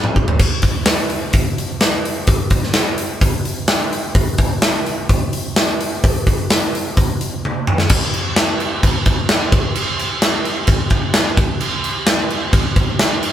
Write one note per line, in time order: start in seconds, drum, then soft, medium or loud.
0.04 mid tom medium
0.16 kick medium
0.28 floor tom medium
0.39 kick medium
0.39 crash medium
0.62 kick medium
0.62 snare soft
0.62 open hi-hat soft
0.86 snare loud
0.86 open hi-hat medium
1.10 open hi-hat soft
1.33 kick medium
1.33 open hi-hat medium
1.58 open hi-hat soft
1.81 snare loud
1.81 open hi-hat medium
2.05 open hi-hat medium
2.27 kick loud
2.27 open hi-hat medium
2.50 kick medium
2.50 open hi-hat medium
2.63 snare soft
2.74 snare medium
2.74 open hi-hat medium
2.98 open hi-hat medium
3.21 kick loud
3.21 open hi-hat medium
3.45 open hi-hat soft
3.68 snare loud
3.68 open hi-hat medium
3.93 open hi-hat soft
4.15 kick loud
4.15 open hi-hat medium
4.38 kick medium
4.38 open hi-hat medium
4.62 snare loud
4.62 open hi-hat medium
4.86 open hi-hat soft
5.09 kick loud
5.09 open hi-hat medium
5.33 open hi-hat medium
5.56 snare loud
5.56 open hi-hat medium
5.81 open hi-hat medium
6.04 kick loud
6.04 open hi-hat medium
6.27 kick medium
6.27 open hi-hat medium
6.50 snare loud
6.50 open hi-hat medium
6.75 open hi-hat medium
6.97 kick loud
6.97 open hi-hat medium
7.21 open hi-hat medium
7.45 high tom medium
7.67 mid tom medium
7.78 snare medium
7.89 kick loud
7.89 crash loud
7.89 crash medium
8.14 crash medium
8.36 snare loud
8.36 crash medium
8.60 crash medium
8.83 kick loud
8.83 crash medium
9.06 kick medium
9.06 crash medium
9.29 snare loud
9.29 crash medium
9.52 kick loud
9.52 crash medium
9.75 crash medium
9.99 crash medium
10.22 snare loud
10.22 crash medium
10.45 crash medium
10.67 kick loud
10.67 crash medium
10.90 kick medium
10.90 crash medium
11.14 snare loud
11.14 crash medium
11.37 kick loud
11.37 crash medium
11.60 crash medium
11.84 crash medium
12.06 snare loud
12.06 crash medium
12.30 crash medium
12.53 kick loud
12.53 crash medium
12.76 kick medium
12.76 crash medium
12.99 snare loud
12.99 crash medium
13.23 crash medium